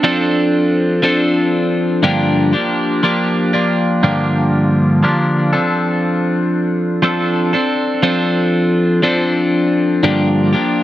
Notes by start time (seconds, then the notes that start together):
0.03 F3 C4 D4 A4
1.03 F3 C4 D4 A4
2.03 G2 D3 F3 A#3 D4 G4
2.53 F3 A#3 D4 G4
3.03 F3 A#3 D4 G4
3.53 F3 A#3 D4 G4
4.03 G2 D3 F3 A#3 D4 G4
5.03 F3 A#3 D4 G4
5.53 F3 C4 D4 A4
7.02 F3 C4 D4 A4
7.53 C4 D4 A4
8.03 F3 C4 D4 A4
9.02 F3 C4 D4 A4
10.03 G2 D3 F3 A#3 D4 G4
10.53 F3 A#3 D4 G4